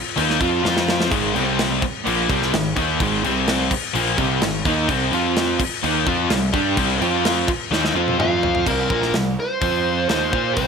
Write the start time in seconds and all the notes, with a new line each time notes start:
0.16 D#2 D#3 A#3 D#4, crash
0.30 snare
0.40 F2 F3 C4 F4, kick, crash
0.64 F2 F3 C4 F4, snare
0.77 snare
0.89 snare
1.01 snare
1.11 G#1 G#2 D#3 G#3, kick, crash
1.35 C2 C3 G3 C4, crash
1.59 snare, crash
1.82 muted distorted electric guitar stroke, muted picked electric bass stroke, muted overdriven electric guitar stroke, kick, crash
2.06 A#1 A#2 F3 A#3, crash
2.29 C2 C3 G3 C4, kick, crash
2.42 snare
2.53 G#1 G#2 D#3, snare, crash
2.76 D#2 D#3 A#3 D#4, kick, crash
3.00 G#1 G#2 D#3 G#3, kick, crash
3.24 C2 C3 G3 C4, crash
3.48 snare, crash
3.71 muted distorted electric guitar stroke, muted picked electric bass stroke, muted overdriven electric guitar stroke, kick, crash
3.94 A#1 A#2 F3 A#3, crash
4.18 C2 C3 G3 C4, kick, crash
4.42 G#1 G#2 D#3, snare, crash
4.65 D#2 D#3 A#3 D#4, kick, crash
4.89 C2 C3 G3 C4, kick, crash
5.12 F2 F3 C4 F4, crash
5.36 snare, crash
5.59 muted picked electric bass stroke, muted overdriven electric guitar stroke, muted distorted electric guitar stroke, kick, crash
5.83 D#2 D#3 A#3 D#4, crash
6.07 F2 F3 C4 F4, kick, crash
6.30 C2 C3 G3, snare, crash
6.53 G2 G3 D4 G4, kick, crash
6.77 C2 C3 G3 C4, kick, crash
7.01 F2 F3 C4 F4, crash
7.25 snare, crash
7.48 muted picked electric bass stroke, muted overdriven electric guitar stroke, muted distorted electric guitar stroke, kick, crash
7.71 D#2 D#3 A#3 D#4, snare
7.85 snare
7.95 F2 F3 C4 F4
8.08 high tom
8.19 F2 F3 C4 F4 F5, mid tom
8.43 floor tom
8.55 floor tom
8.66 C2 C3 G3 C4 A#4, kick, crash
8.90 A#1 A#2 F3 A#3, kick
9.02 snare
9.14 C2 C3 G3, snare, open hi-hat
9.40 C5
9.61 F2 F3 C4 F4, kick, open hi-hat
10.09 D#2 D#3 A#3 D#4 C5, snare, open hi-hat
10.33 A#2 A#3 F4 A#4, kick
10.54 C2 C3 G3 C4 C5, kick, open hi-hat